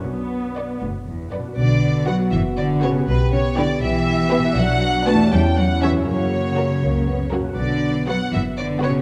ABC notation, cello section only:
X:1
M:6/8
L:1/8
Q:3/8=80
K:Bm
V:1 name="Cello section" clef=bass
B,,3 D,, E,, F,, | D,2 F, E, D, C, | B,, C, D, E,3 | F,2 A, G, F, E, |
C,4- C, z | D,2 F, E, D, C, |]